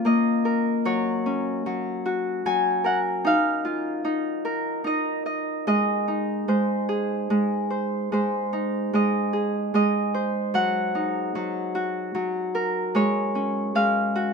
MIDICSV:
0, 0, Header, 1, 2, 480
1, 0, Start_track
1, 0, Tempo, 801068
1, 511, Time_signature, 3, 2, 24, 8
1, 2908, Tempo, 813008
1, 6748, Tempo, 796813
1, 8541, End_track
2, 0, Start_track
2, 0, Title_t, "Harp"
2, 0, Program_c, 0, 46
2, 0, Note_on_c, 0, 61, 62
2, 0, Note_on_c, 0, 65, 69
2, 0, Note_on_c, 0, 73, 78
2, 0, Note_on_c, 0, 77, 78
2, 29, Note_on_c, 0, 58, 71
2, 36, Note_on_c, 0, 75, 82
2, 210, Note_off_c, 0, 73, 0
2, 270, Note_on_c, 0, 70, 64
2, 511, Note_on_c, 0, 54, 78
2, 514, Note_on_c, 0, 73, 82
2, 547, Note_off_c, 0, 65, 0
2, 547, Note_off_c, 0, 77, 0
2, 752, Note_off_c, 0, 61, 0
2, 755, Note_on_c, 0, 61, 71
2, 988, Note_off_c, 0, 54, 0
2, 995, Note_on_c, 0, 54, 74
2, 1105, Note_off_c, 0, 75, 0
2, 1232, Note_on_c, 0, 66, 76
2, 1465, Note_off_c, 0, 54, 0
2, 1472, Note_on_c, 0, 54, 76
2, 1474, Note_on_c, 0, 80, 100
2, 1541, Note_off_c, 0, 70, 0
2, 1660, Note_off_c, 0, 73, 0
2, 1703, Note_on_c, 0, 70, 68
2, 1713, Note_on_c, 0, 78, 84
2, 1777, Note_off_c, 0, 78, 0
2, 1945, Note_on_c, 0, 63, 83
2, 1955, Note_off_c, 0, 58, 0
2, 1957, Note_on_c, 0, 77, 92
2, 1979, Note_off_c, 0, 54, 0
2, 1993, Note_off_c, 0, 66, 0
2, 2186, Note_on_c, 0, 65, 71
2, 2373, Note_off_c, 0, 80, 0
2, 2421, Note_off_c, 0, 63, 0
2, 2424, Note_on_c, 0, 63, 79
2, 2491, Note_off_c, 0, 61, 0
2, 2663, Note_off_c, 0, 70, 0
2, 2665, Note_on_c, 0, 70, 78
2, 2899, Note_off_c, 0, 63, 0
2, 2901, Note_on_c, 0, 63, 78
2, 2916, Note_on_c, 0, 75, 82
2, 2954, Note_off_c, 0, 77, 0
2, 3145, Note_off_c, 0, 75, 0
2, 3147, Note_on_c, 0, 75, 63
2, 3390, Note_on_c, 0, 56, 80
2, 3391, Note_off_c, 0, 75, 0
2, 3394, Note_on_c, 0, 75, 89
2, 3629, Note_off_c, 0, 63, 0
2, 3631, Note_on_c, 0, 63, 66
2, 3686, Note_off_c, 0, 65, 0
2, 3862, Note_off_c, 0, 56, 0
2, 3869, Note_on_c, 0, 56, 69
2, 3872, Note_on_c, 0, 72, 63
2, 3921, Note_off_c, 0, 70, 0
2, 4109, Note_on_c, 0, 68, 77
2, 4347, Note_off_c, 0, 56, 0
2, 4354, Note_on_c, 0, 56, 74
2, 4447, Note_off_c, 0, 75, 0
2, 4589, Note_off_c, 0, 72, 0
2, 4591, Note_on_c, 0, 72, 61
2, 4829, Note_off_c, 0, 56, 0
2, 4836, Note_on_c, 0, 56, 70
2, 4843, Note_off_c, 0, 72, 0
2, 4845, Note_on_c, 0, 72, 75
2, 5075, Note_off_c, 0, 63, 0
2, 5077, Note_on_c, 0, 63, 69
2, 5311, Note_off_c, 0, 56, 0
2, 5318, Note_on_c, 0, 56, 72
2, 5326, Note_on_c, 0, 75, 82
2, 5451, Note_off_c, 0, 68, 0
2, 5552, Note_on_c, 0, 68, 72
2, 5786, Note_off_c, 0, 56, 0
2, 5793, Note_on_c, 0, 56, 73
2, 5797, Note_off_c, 0, 75, 0
2, 5800, Note_on_c, 0, 75, 86
2, 6014, Note_off_c, 0, 72, 0
2, 6032, Note_on_c, 0, 72, 70
2, 6265, Note_on_c, 0, 54, 81
2, 6270, Note_on_c, 0, 78, 97
2, 6302, Note_off_c, 0, 56, 0
2, 6504, Note_off_c, 0, 63, 0
2, 6507, Note_on_c, 0, 63, 69
2, 6738, Note_off_c, 0, 54, 0
2, 6745, Note_on_c, 0, 54, 75
2, 6855, Note_off_c, 0, 75, 0
2, 6897, Note_off_c, 0, 68, 0
2, 6984, Note_on_c, 0, 66, 78
2, 7209, Note_off_c, 0, 72, 0
2, 7216, Note_off_c, 0, 54, 0
2, 7223, Note_on_c, 0, 54, 73
2, 7444, Note_off_c, 0, 78, 0
2, 7465, Note_on_c, 0, 70, 70
2, 7705, Note_on_c, 0, 56, 77
2, 7712, Note_on_c, 0, 73, 88
2, 7739, Note_off_c, 0, 54, 0
2, 7949, Note_on_c, 0, 61, 66
2, 8130, Note_off_c, 0, 63, 0
2, 8183, Note_off_c, 0, 56, 0
2, 8190, Note_on_c, 0, 56, 74
2, 8193, Note_on_c, 0, 77, 94
2, 8229, Note_off_c, 0, 66, 0
2, 8433, Note_on_c, 0, 66, 78
2, 8541, Note_off_c, 0, 56, 0
2, 8541, Note_off_c, 0, 61, 0
2, 8541, Note_off_c, 0, 66, 0
2, 8541, Note_off_c, 0, 70, 0
2, 8541, Note_off_c, 0, 73, 0
2, 8541, Note_off_c, 0, 77, 0
2, 8541, End_track
0, 0, End_of_file